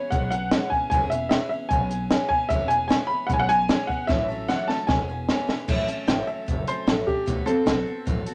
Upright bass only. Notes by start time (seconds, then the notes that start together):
0.12 B1
0.72 muted upright bass stroke
0.91 E1
1.51 muted upright bass stroke
1.71 B1
2.30 muted upright bass stroke
2.50 E1
3.10 muted upright bass stroke
3.29 B1
3.89 muted upright bass stroke
4.09 A1
4.68 muted upright bass stroke
4.89 E1
5.49 muted upright bass stroke
5.68 A1
5.88 muted upright bass stroke
6.08 G#1
6.28 muted upright bass stroke
6.48 F#1
6.68 muted upright bass stroke
6.87 A1
7.27 D2
7.66 B1
7.87 muted upright bass stroke
8.07 A1
8.27 muted upright bass stroke